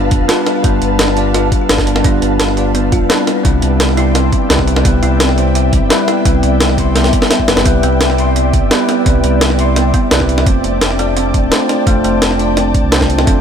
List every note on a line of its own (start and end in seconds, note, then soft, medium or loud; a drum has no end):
0.00 0.28 G3 loud
0.00 0.29 B3 medium
0.00 0.29 D4 medium
0.00 0.29 F4 medium
0.00 0.30 B4 loud
0.00 3.23 B4 medium
0.00 1.18 D5 medium
0.00 3.23 F5 medium
0.00 3.23 A5 medium
0.11 0.19 G1 medium
0.11 kick loud
0.11 closed hi-hat medium
0.20 0.28 F1 loud
0.28 0.61 G3 loud
0.28 0.62 B3 medium
0.28 0.62 D4 medium
0.28 0.46 F4 loud
0.28 0.62 F4 medium
0.28 0.62 B4 loud
0.28 snare loud
0.28 closed hi-hat medium
0.46 snare soft
0.46 closed hi-hat medium
0.62 0.80 G1 loud
0.62 1.14 G3 medium
0.62 1.14 B3 medium
0.62 0.80 B3 medium
0.62 1.15 D4 medium
0.62 1.15 F4 medium
0.62 1.15 B4 medium
0.62 kick loud
0.62 closed hi-hat medium
0.82 1.50 G1 medium
0.82 closed hi-hat medium
0.99 1.09 D4 medium
0.99 snare loud
0.99 closed hi-hat medium
1.08 snare soft
1.15 1.66 G3 medium
1.15 1.67 B3 medium
1.15 1.67 D4 medium
1.15 1.68 F4 medium
1.15 1.68 D5 medium
1.15 closed hi-hat medium
1.34 1.51 F4 loud
1.34 snare soft
1.34 closed hi-hat medium
1.52 kick loud
1.52 closed hi-hat medium
1.69 2.03 G1 loud
1.69 1.86 D4 medium
1.69 snare loud
1.69 closed hi-hat medium
1.78 kick medium
1.78 snare soft
1.86 2.02 G3 medium
1.86 2.02 B3 medium
1.86 2.02 D4 medium
1.86 2.02 F4 medium
1.86 2.03 B4 medium
1.86 closed hi-hat medium
1.96 snare medium
2.03 2.20 G1 medium
2.03 2.54 G3 medium
2.03 2.55 B3 medium
2.03 2.55 D4 medium
2.03 2.14 D4 medium
2.03 2.55 F4 medium
2.03 2.56 B4 medium
2.03 kick loud
2.03 closed hi-hat medium
2.22 2.91 G1 medium
2.22 closed hi-hat medium
2.40 snare loud
2.40 closed hi-hat medium
2.48 snare soft
2.56 3.07 G3 medium
2.56 3.07 B3 medium
2.56 3.08 D4 medium
2.56 3.08 F4 medium
2.56 3.08 D5 medium
2.56 closed hi-hat medium
2.75 2.90 B3 medium
2.75 closed hi-hat medium
2.92 3.00 G1 medium
2.92 3.09 F4 loud
2.92 kick loud
2.92 closed hi-hat medium
3.01 3.09 F1 loud
3.09 3.42 G3 loud
3.09 3.43 B3 medium
3.09 3.43 C4 medium
3.09 3.19 D4 medium
3.09 3.43 E4 medium
3.09 3.43 B4 loud
3.09 snare loud
3.09 closed hi-hat medium
3.27 13.41 D5 medium
3.27 10.43 E5 medium
3.27 10.43 G5 medium
3.27 snare soft
3.27 closed hi-hat medium
3.43 3.61 C2 loud
3.43 3.95 G3 medium
3.43 3.95 B3 medium
3.43 3.95 C4 medium
3.43 3.96 E4 medium
3.43 3.96 B4 loud
3.43 kick loud
3.43 closed hi-hat medium
3.62 4.31 C2 medium
3.62 closed hi-hat medium
3.80 3.96 B3 medium
3.80 snare loud
3.80 closed hi-hat medium
3.89 snare soft
3.96 4.47 G3 medium
3.96 4.14 E4 loud
3.96 4.48 E4 medium
3.96 4.49 C6 medium
3.96 closed hi-hat medium
4.15 4.24 C4 medium
4.15 snare soft
4.15 closed hi-hat medium
4.32 kick loud
4.32 closed hi-hat medium
4.49 4.84 C2 loud
4.49 4.82 G3 medium
4.49 4.83 C4 medium
4.49 4.83 E4 medium
4.49 4.83 B4 loud
4.49 snare loud
4.49 closed hi-hat medium
4.59 kick medium
4.59 snare soft
4.68 closed hi-hat medium
4.76 snare medium
4.83 5.01 C2 loud
4.83 5.35 G3 medium
4.83 5.35 B3 medium
4.83 5.01 B3 medium
4.83 5.36 E4 medium
4.83 5.36 B4 loud
4.83 kick loud
4.83 closed hi-hat loud
5.03 5.71 C2 medium
5.03 5.19 E4 loud
5.03 closed hi-hat medium
5.20 5.30 C4 medium
5.20 snare loud
5.20 closed hi-hat loud
5.29 snare soft
5.36 5.87 G3 medium
5.36 5.88 C4 medium
5.36 5.89 E4 medium
5.36 5.89 C5 medium
5.36 closed hi-hat medium
5.55 closed hi-hat medium
5.73 5.81 C2 medium
5.73 kick loud
5.73 closed hi-hat medium
5.82 5.90 G1 loud
5.90 6.22 G3 loud
5.90 6.23 B3 medium
5.90 6.06 B3 medium
5.90 6.24 E4 medium
5.90 6.24 B4 loud
5.90 snare loud
5.90 closed hi-hat loud
6.08 6.25 E4 loud
6.08 snare soft
6.08 closed hi-hat medium
6.24 6.41 C2 loud
6.24 6.75 G3 medium
6.24 6.35 C4 medium
6.24 6.76 E4 medium
6.24 6.77 B4 loud
6.24 kick loud
6.24 closed hi-hat loud
6.43 7.12 C2 medium
6.43 closed hi-hat medium
6.61 snare loud
6.61 closed hi-hat loud
6.69 snare soft
6.76 7.28 G3 medium
6.76 7.28 B3 medium
6.76 7.29 E4 medium
6.76 7.29 C6 medium
6.76 kick medium
6.76 closed hi-hat medium
6.96 7.11 B3 medium
6.96 snare medium
6.96 closed hi-hat loud
7.04 snare medium
7.13 kick medium
7.13 closed hi-hat medium
7.22 snare medium
7.31 7.47 B3 medium
7.31 snare medium
7.31 closed hi-hat loud
7.39 kick medium
7.47 7.56 G1 medium
7.47 7.63 G3 medium
7.47 7.63 B3 medium
7.47 7.64 C4 medium
7.47 7.64 E4 medium
7.47 7.64 B4 medium
7.47 snare loud
7.47 closed hi-hat medium
7.57 7.65 G1 loud
7.57 snare medium
7.64 7.82 C2 loud
7.64 8.16 G3 medium
7.64 8.16 B3 medium
7.64 7.82 B3 medium
7.64 8.17 E4 medium
7.64 8.17 B4 loud
7.64 kick loud
7.64 closed hi-hat loud
7.83 8.52 C2 medium
7.83 7.93 B3 loud
7.83 closed hi-hat medium
8.01 8.10 C4 medium
8.01 snare loud
8.01 closed hi-hat loud
8.10 snare soft
8.17 8.68 G3 medium
8.17 8.69 E4 medium
8.17 8.70 C6 medium
8.17 closed hi-hat medium
8.36 closed hi-hat loud
8.53 8.61 C2 medium
8.53 kick loud
8.53 closed hi-hat medium
8.62 8.70 G1 loud
8.70 9.03 G3 loud
8.70 9.04 B3 medium
8.70 8.87 B3 medium
8.70 9.04 E4 medium
8.70 9.04 B4 loud
8.70 snare loud
8.70 closed hi-hat loud
8.89 8.98 B3 loud
8.89 snare soft
8.89 closed hi-hat medium
9.05 9.22 C2 loud
9.05 9.56 G3 medium
9.05 9.16 C4 medium
9.05 9.57 E4 medium
9.05 9.57 B4 medium
9.05 kick loud
9.05 closed hi-hat medium
9.24 9.92 C2 medium
9.24 closed hi-hat medium
9.41 snare loud
9.41 closed hi-hat loud
9.50 snare soft
9.57 10.09 G3 medium
9.57 10.09 B3 medium
9.57 10.10 E4 medium
9.57 10.10 C6 medium
9.57 closed hi-hat medium
9.76 9.92 B3 medium
9.76 snare medium
9.76 closed hi-hat loud
9.94 10.03 B3 loud
9.94 kick loud
9.94 closed hi-hat medium
10.11 10.45 C2 loud
10.11 10.44 G3 medium
10.11 10.21 C4 medium
10.11 10.45 E4 medium
10.11 10.45 B4 loud
10.11 snare loud
10.11 closed hi-hat medium
10.20 kick medium
10.20 snare soft
10.29 closed hi-hat medium
10.38 snare medium
10.45 10.62 F1 loud
10.45 10.96 A3 medium
10.45 10.97 C4 medium
10.45 10.97 D4 medium
10.45 10.97 F4 medium
10.45 10.98 C5 loud
10.45 13.41 G5 medium
10.45 13.41 A5 medium
10.45 kick loud
10.45 closed hi-hat medium
10.64 11.33 F1 medium
10.64 closed hi-hat medium
10.81 10.97 A3 medium
10.81 snare loud
10.81 closed hi-hat loud
10.90 snare soft
10.98 11.49 A3 medium
10.98 11.09 A3 loud
10.98 11.49 C4 medium
10.98 11.50 D4 medium
10.98 11.50 F4 medium
10.98 11.50 D5 medium
10.98 closed hi-hat medium
11.17 11.26 C4 medium
11.17 closed hi-hat medium
11.34 11.42 F1 medium
11.34 kick loud
11.34 closed hi-hat medium
11.43 11.51 D1 loud
11.51 11.84 A3 medium
11.51 11.84 C4 medium
11.51 11.85 D4 medium
11.51 11.85 F4 medium
11.51 11.85 C5 loud
11.51 snare loud
11.51 closed hi-hat medium
11.69 snare soft
11.69 closed hi-hat medium
11.85 12.03 F1 loud
11.85 12.37 A3 medium
11.85 12.03 A3 medium
11.85 12.37 C4 medium
11.85 12.37 D4 medium
11.85 12.38 F4 medium
11.85 12.38 C5 medium
11.85 kick loud
11.85 closed hi-hat medium
12.04 12.73 F1 medium
12.04 12.14 A3 loud
12.04 closed hi-hat medium
12.22 12.31 C4 medium
12.22 snare loud
12.22 closed hi-hat medium
12.31 snare soft
12.38 12.89 A3 medium
12.38 12.90 C4 medium
12.38 12.90 D4 medium
12.38 12.90 F4 medium
12.38 12.91 D5 medium
12.38 closed hi-hat medium
12.57 snare soft
12.57 closed hi-hat medium
12.74 kick loud
12.74 closed hi-hat medium
12.83 13.26 C2 medium
12.91 13.25 A3 loud
12.91 13.25 C4 medium
12.91 13.09 C4 medium
12.91 13.25 D4 medium
12.91 13.25 F4 medium
12.91 13.26 C5 loud
12.91 snare loud
12.91 closed hi-hat medium
13.01 kick medium
13.01 snare soft
13.10 closed hi-hat medium
13.19 snare medium
13.26 13.41 F1 loud
13.26 13.41 A3 medium
13.26 13.41 C4 medium
13.26 13.37 C4 medium
13.26 13.41 D4 medium
13.26 13.41 F4 medium
13.26 13.41 C5 medium
13.26 kick loud
13.26 closed hi-hat medium